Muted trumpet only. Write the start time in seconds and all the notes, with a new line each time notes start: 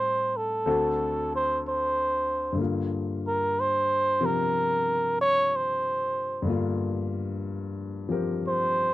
Already playing: C5
0.37 A4
1.36 C5
1.69 C5
3.27 A#4
3.60 C5
4.25 A#4
5.21 C#5
5.56 C5
8.48 C5